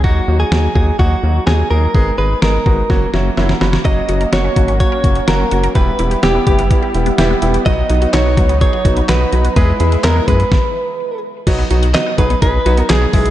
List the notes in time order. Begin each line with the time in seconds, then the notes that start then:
0.04 D#2 F#3 A#3 D#4 F#4, kick
0.28 D#2 F#3 A#3 D#4 F#4
0.40 G#4
0.52 D#2 F#3 A#3 D#4 F#4, snare
0.75 D#2 F#3 A#3 D#4 F#4 G#4, kick
0.99 D#2 F#3 A#3 D#4 F#4, kick
1.23 D#2 F#3 A#3 D#4 F#4
1.47 D#2 F#3 A#3 D#4 F#4 G#4, snare
1.71 D#2 F#3 A#3 D#4 G#4 A#4
1.95 G#1 G#3 B3 D#4 G#4, kick
2.18 G#1 G#3 B3 D#4 G#4 B4
2.42 G#1 G#3 B3 D#4 G#4 A#4, snare
2.66 G#1 G#3 B3 D#4 F#4, kick
2.90 F#1 F#3 A#3 C#4 F#4, kick, snare
3.13 F#1 F#3 A#3 C#4 F#4 E5, snare
3.37 F#1 F#3 A#3 C#4 E4 F#5, snare
3.49 snare
3.61 F#1 F#3 A#3 C#4 F#4 B5, snare
3.73 snare
3.85 F#1 F#3 A#3 C#4 F#4 D#5, kick, closed hi-hat
4.09 F#1 F#3 A#3 C#4 F#4, closed hi-hat
4.21 A#4, closed hi-hat
4.33 F#1 F#3 A#3 C#4 F#4 C#5, snare, closed hi-hat
4.44 C#4
4.56 G#1 F#3 A#3 C#4 F#4, kick, closed hi-hat
4.68 C#4, closed hi-hat
4.80 F#3 A#3 C#4 F#4 C#5, kick, closed hi-hat
4.92 A#4
5.04 F#1 F#3 A#3 C#4 F#4, kick, closed hi-hat
5.16 C#4, closed hi-hat
5.28 F#1 F#3 A#3 C#4 F#4 A#4, snare, closed hi-hat
5.40 C#4
5.51 F#1 F#3 A#3 C#4 F#4, closed hi-hat
5.63 A#4, closed hi-hat
5.75 E1 G3 B3 E4 G4 B4, kick, closed hi-hat
5.99 E1 G3 B3 E4 G4, closed hi-hat
6.11 G4, closed hi-hat
6.23 E1 G3 B3 E4 G4, snare, closed hi-hat
6.35 B3
6.47 F#1 G3 B3 E4 G4, kick, closed hi-hat
6.59 B3, closed hi-hat
6.71 G3 B3 E4 G4, kick, closed hi-hat
6.83 G4
6.94 E1 G3 B3 E4 G4, closed hi-hat
7.06 B3, closed hi-hat
7.18 E1 G3 B3 E4 G4, snare, closed hi-hat
7.30 B3
7.42 E1 G3 B3 E4 G4, closed hi-hat
7.54 G4, closed hi-hat
7.66 B1 F#3 B3 D#4 F#4 D#5, kick, closed hi-hat
7.90 B1 F#3 B3 D#4 F#4, closed hi-hat
8.02 F#4, closed hi-hat
8.13 B1 F#3 B3 D#4 F#4 C#5, snare, clap, closed hi-hat
8.26 B3
8.37 C#2 F#3 B3 D#4 F#4, kick, closed hi-hat
8.49 B3, closed hi-hat
8.61 F#3 B3 D#4 G#4 C#5, kick, closed hi-hat
8.73 F#4
8.85 B1 F#3 B3 D#4 F#4, kick, closed hi-hat
8.97 B3, closed hi-hat
9.09 B1 F#3 B3 D#4 F#4 B4, snare, clap, closed hi-hat
9.21 B3
9.32 B1 F#3 B3 D#4 F#4, closed hi-hat
9.45 F#4, closed hi-hat
9.56 E2 G#3 B3 E4 G#4 B4, kick, closed hi-hat
9.80 E2 G#3 B3 E4 G#4, closed hi-hat
9.92 G#4, closed hi-hat
10.04 E2 G#3 B3 E4 A#4, snare, clap, closed hi-hat
10.16 B3
10.28 F#2 G#3 B3 E4 G#4 B4, kick, closed hi-hat
10.40 B3, closed hi-hat
10.52 kick, snare
11.47 B1 F#3 B3 D#4 F#4, kick, closed hi-hat, crash
11.59 B3
11.71 B1 F#3 B3 D#4 F#4, closed hi-hat
11.83 F#4, closed hi-hat
11.94 F#3 B3 D#4 F#4 D#5, snare, clap, closed hi-hat
12.06 B3
12.18 B1 F#3 B3 D#4 G#4 B4, kick, closed hi-hat
12.30 B3, closed hi-hat
12.42 B1 F#3 B3 D#4 G#4 B4, kick, closed hi-hat
12.66 B1 F#3 B3 D#4 F#4, closed hi-hat
12.77 B3 A#4, closed hi-hat
12.90 B1 F#3 B3 D#4 G#4, snare, clap, closed hi-hat
13.02 B3
13.13 B1 G#3 B3 E4 G#4, kick, open hi-hat
13.26 closed hi-hat